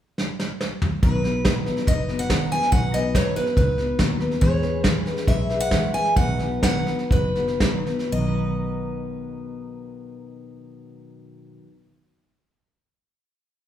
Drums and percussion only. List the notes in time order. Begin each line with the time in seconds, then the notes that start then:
0.18 snare
0.39 snare
0.61 snare
0.82 mid tom
1.03 kick, snare
1.24 snare
1.45 kick, snare, hi-hat pedal
1.66 snare
1.77 snare
1.87 kick, snare
2.08 snare
2.19 snare
2.30 kick, snare, hi-hat pedal
2.51 snare
2.62 snare
2.72 kick, snare
2.94 snare
3.15 kick, snare, hi-hat pedal
3.36 snare
3.46 snare
3.56 kick, snare
3.78 snare
3.99 kick, snare, hi-hat pedal
4.20 snare
4.31 snare
4.41 kick, snare
4.63 snare
4.84 kick, snare, hi-hat pedal
5.06 snare
5.16 snare
5.27 kick, snare
5.49 snare
5.71 kick, snare, hi-hat pedal
5.94 snare
6.05 snare
6.16 kick, snare
6.39 snare
6.63 kick, snare, hi-hat pedal
6.86 snare
6.99 snare
7.11 kick, snare
7.35 snare
7.48 snare
7.60 kick, snare, hi-hat pedal
7.86 snare
7.99 snare